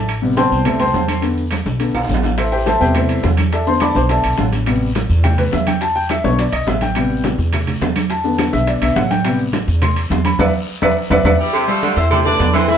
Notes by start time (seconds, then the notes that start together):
Already playing: A1
0.08 high conga, high timbale, long guiro, claves, maracas
0.22 C3 G3 B3, high conga
0.37 C5 G5 A5 C6, high conga, high timbale, low timbale, short guiro, maracas
0.51 C2, high conga, short guiro, maracas
0.65 C3 G3 B3 A4 C5 E5, high conga, low conga, high timbale, long guiro, claves, maracas
0.80 C5 G5 A5 C6, high conga, low conga, high timbale, maracas
0.94 E2, high conga, low timbale, short guiro, maracas
1.08 high conga, high timbale, short guiro, claves, maracas
1.22 D3 A3 B3, high conga, high timbale, long guiro, maracas
1.37 high conga, maracas
1.51 high conga, high timbale, low timbale, short guiro, claves, maracas
1.66 B1, high conga, short guiro, maracas
1.80 D3 A3 B3, high conga, high timbale, long guiro, maracas
1.94 B1, high conga, high timbale, claves
2.04 low timbale
2.09 A1, high conga, short guiro, maracas
2.14 low timbale
2.23 high conga, low timbale, short guiro, maracas
2.37 E4 A4 C5 E5, high bongo, high conga, high timbale, long guiro, claves, maracas
2.52 G4 C5 E5 G5, high conga, maracas
2.66 A4 C5 E5 A5, high bongo, high conga, high timbale, low timbale, short guiro, maracas
2.80 E2 C3 G3 B3 G4 C5 E5 G5, high conga, short guiro, maracas
2.91 D#5, high timbale
2.95 E4 A4 C5 E5, high bongo, high conga, low conga, long guiro, claves, maracas
3.09 high timbale, maracas
3.23 E2, high bongo, low bongo, high conga, low timbale, short guiro, maracas
3.37 high conga, high timbale, short guiro, claves, maracas
3.52 A4 D5 E5 A5, high bongo, high conga, high timbale, long guiro, maracas
3.67 D3 A3 B3 C5 C6, high bongo, high conga, maracas
3.80 D5 A5 B5 D6, high bongo, high conga, high timbale, low timbale, short guiro, claves, maracas
3.95 B1 C5 C6, high bongo, high conga, short guiro, maracas
4.09 A4 D5 E5 A5, high bongo, high conga, high timbale, long guiro, maracas
4.24 B1, high conga, high timbale, claves, maracas
4.38 A1, high bongo, low bongo, high conga, low timbale, short guiro, maracas
4.52 high bongo, high conga, high timbale, short guiro, maracas
4.66 C3 G3 B3, high bongo, high conga, high timbale, long guiro, claves, maracas
4.81 high conga
4.95 high bongo, high conga, high timbale, low timbale, short guiro, maracas
5.10 E2, high conga, short guiro, maracas
5.24 G5, high bongo, high conga, low conga, high timbale, long guiro, claves, maracas
5.38 B4, high conga, low conga, high timbale
5.52 E2 E5, high bongo, low bongo, high conga, low timbale, short guiro, maracas
5.67 G5, high conga, high timbale, short guiro, claves, maracas
5.81 A5, high bongo, high conga, high timbale, long guiro, maracas
5.96 G5, high bongo, high conga, maracas
6.09 E5, high bongo, high conga, high timbale, low timbale, short guiro, claves, maracas
6.24 B1 D3 A3 B3 C#5, high bongo, high conga, short guiro, maracas
6.38 D5, high bongo, high conga, high timbale, long guiro, maracas
6.52 B1 D#5, high conga, high timbale, claves
6.67 A1 E5, high bongo, low bongo, high conga, low timbale, short guiro, maracas
6.81 G5, high bongo, high conga, high timbale, short guiro, maracas
6.95 C3 G3 B3, high bongo, high conga, high timbale, long guiro, claves, maracas
7.10 high conga
7.24 high bongo, high conga, high timbale, low timbale, short guiro, maracas
7.38 E2, high conga, short guiro, maracas
7.53 high bongo, high conga, low conga, high timbale, long guiro, claves, maracas
7.67 high conga, low conga, high timbale, maracas
7.81 E2, high bongo, low bongo, high conga, low timbale, short guiro, maracas
7.96 high conga, high timbale, short guiro, claves, maracas
8.10 A5, high bongo, high conga, high timbale, long guiro, maracas
8.24 D3 A3 B3, high bongo, high conga, maracas
8.38 high bongo, high conga, high timbale, low timbale, short guiro, claves, maracas
8.53 B1 E5, high bongo, high conga, short guiro, maracas
8.67 D5, high bongo, high conga, high timbale, long guiro, maracas
8.82 B1 D3 A3 B3 E5, high conga, high timbale, claves
8.96 A1 F#5, high bongo, low bongo, high conga, low timbale, short guiro, maracas
9.11 G5, high bongo, high conga, high timbale, short guiro, maracas
9.24 C3 G3 B3, high bongo, high timbale, long guiro, claves, maracas
9.39 high conga, maracas
9.53 high bongo, high conga, high timbale, low timbale, short guiro, maracas
9.67 E2, high conga, short guiro, maracas
9.82 C6, high bongo, high conga, low conga, high timbale, long guiro, claves, maracas
9.96 high conga, high timbale, maracas
10.10 E2, high bongo, low bongo, high conga, low timbale, short guiro, maracas
10.25 B5, high conga, high timbale, short guiro, claves, maracas
10.39 E2 B4 D5 E5, low bongo, high conga, high timbale, long guiro, claves, maracas
10.82 E2 B4 D5 E5, low bongo, high conga, high timbale, long guiro, claves, maracas
11.10 E2 B4 D5 E5, low bongo, high conga, high timbale, long guiro, claves, maracas
11.24 E2 B4 D5 E5, low bongo, high conga, high timbale, long guiro, claves, maracas
11.40 G3 E4 G4
11.53 C3, cowbell, high conga, low agogo, long guiro, claves, maracas
11.68 G3 A3 F4 G4 A4 G5, high conga, low agogo
11.82 D3, cowbell, high conga, low timbale, short guiro, maracas
11.96 E2 C4 E4 A4 C5 E5 E6, cowbell, high conga, low agogo, short guiro, maracas
12.11 C3 D4 A4 D5, cowbell, high conga, low conga, low agogo, long guiro, claves, maracas
12.24 A3 D4 A4 B4 D5 A5, high conga, low conga
12.39 E2, cowbell, high conga, low timbale, low agogo, short guiro, maracas
12.53 E3 C4 E4 A4 C5 E5 E6, cowbell, high conga, low agogo, short guiro, claves, maracas
12.68 E3 E4 B4 E5, cowbell, high conga, long guiro, maracas